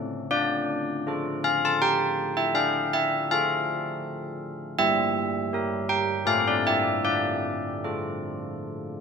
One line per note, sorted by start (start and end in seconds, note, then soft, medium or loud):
0.00 0.28 A3 soft
0.00 0.27 C#4 soft
0.00 0.27 A4 soft
0.31 1.03 D4 medium
0.31 1.39 D5 medium
1.07 2.51 F4 soft
1.07 2.52 A4 soft
1.44 1.62 F5 medium
1.65 1.82 A5 medium
1.82 2.35 G5 medium
2.37 2.55 E5 medium
2.54 3.27 D4 medium
2.54 2.91 F5 medium
2.93 3.28 E5 medium
3.31 4.74 F4 soft
3.31 4.74 A4 soft
3.31 4.37 F5 medium
4.79 5.51 G3 medium
4.79 5.86 E5 medium
5.53 6.24 G4 soft
5.53 6.24 A#4 soft
5.89 6.26 G5 medium
6.26 7.02 A3 medium
6.26 7.00 G4 soft
6.26 7.01 A4 soft
6.26 6.46 F5 medium
6.48 6.66 D5 medium
6.67 7.04 E5 medium
7.05 7.82 D4 medium
7.05 8.58 D5 medium
7.84 9.01 F4 soft
7.84 9.01 A4 soft